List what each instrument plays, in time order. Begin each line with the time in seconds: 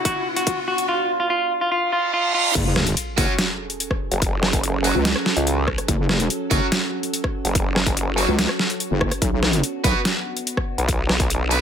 Already playing: ambient pad B2 B3 D4 F#4, riser
0.05 clean electric guitar F#4, kick, closed hi-hat
0.36 clean electric guitar F#4, closed hi-hat
0.47 kick, closed hi-hat
0.68 clean electric guitar F#4
0.78 closed hi-hat
0.88 clean electric guitar F4
1.20 clean electric guitar F4
1.30 clean electric guitar F4
1.61 clean electric guitar F4
1.72 clean electric guitar F4, reverse cymbal
1.93 clean electric guitar F4
2.13 clean electric guitar F4
2.34 clean electric guitar F4
2.55 wobble bass F#1, ambient pad F#3 C#4 G#4 A4, kick, closed hi-hat, crash, sub drop
2.76 cross-stick, snare
2.87 closed hi-hat
2.97 closed hi-hat
3.18 wobble bass F#1, distorted electric guitar F#3 C#4 F#4, kick, open hi-hat
3.39 snare, closed hi-hat
3.70 closed hi-hat
3.80 closed hi-hat
3.91 kick, cross-stick
4.11 wobble bass F#1, closed hi-hat
4.22 kick, closed hi-hat
4.43 cross-stick, snare
4.53 kick, closed hi-hat
4.63 closed hi-hat
4.84 distorted electric guitar F#3 C#4 F#4, open hi-hat
4.95 wobble bass C#2
5.05 snare, closed hi-hat
5.16 cross-stick
5.26 snare
5.36 wobble bass C#2, closed hi-hat
5.47 closed hi-hat
5.68 kick, cross-stick
5.78 cross-stick, closed hi-hat
5.88 wobble bass F#1, ambient pad F#4, kick, closed hi-hat
6.09 cross-stick, snare
6.20 closed hi-hat
6.30 closed hi-hat
6.51 wobble bass F#1, distorted electric guitar F#3 C#4 F#4, kick, open hi-hat
6.72 snare, closed hi-hat
7.03 closed hi-hat
7.14 closed hi-hat
7.24 kick, cross-stick
7.45 wobble bass F#1, closed hi-hat
7.55 kick, closed hi-hat
7.76 cross-stick, snare
7.86 kick, closed hi-hat
7.97 closed hi-hat
8.17 distorted electric guitar F#3 C#4 F#4, open hi-hat
8.28 wobble bass C#2
8.39 snare, closed hi-hat
8.49 cross-stick
8.59 snare
8.70 closed hi-hat
8.80 closed hi-hat
8.91 wobble bass F#1
9.01 kick, cross-stick
9.11 cross-stick, closed hi-hat
9.22 wobble bass B1, ambient pad B3 D4, kick, closed hi-hat
9.43 cross-stick, snare
9.53 closed hi-hat
9.64 closed hi-hat
9.84 wobble bass B1, distorted electric guitar B3 F#4 B4, kick, open hi-hat
10.05 snare, closed hi-hat
10.37 closed hi-hat
10.47 closed hi-hat
10.57 kick, cross-stick
10.78 wobble bass B1, closed hi-hat
10.88 kick, closed hi-hat
11.09 cross-stick, snare
11.20 kick, closed hi-hat
11.30 closed hi-hat
11.51 distorted electric guitar B3 F#4 B4, open hi-hat